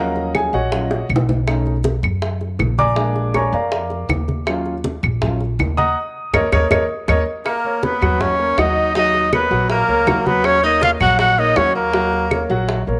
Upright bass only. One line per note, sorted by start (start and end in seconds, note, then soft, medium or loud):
0.00 0.47 D#2 medium
0.53 1.06 A#1 medium
1.09 1.98 B1 medium
2.03 2.56 F#2 medium
2.59 3.48 A#1 medium
3.53 4.05 F2 medium
4.09 4.97 D#2 medium
5.03 5.55 A#1 medium
5.59 5.94 D#2 medium
6.33 6.48 D#2 loud
6.52 6.66 D#2 medium
6.71 6.85 D#2 loud
7.08 7.22 D#2 loud
8.02 8.54 D#2 medium
8.57 9.45 D#2 medium
9.51 9.86 A#1 medium
9.88 10.06 C#2 medium
10.07 10.95 D#2 medium
11.00 11.53 A#1 medium
11.56 12.44 D#2 medium
12.50 12.85 A#1 medium
12.87 13.00 A#1 medium